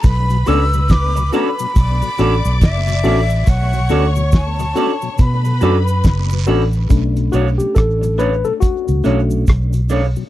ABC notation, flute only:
X:1
M:4/4
L:1/8
Q:"Swing 16ths" 1/4=70
K:Bm
V:1 name="Flute"
b e' d' b3 e2 | f z a2 b3 z | z8 |]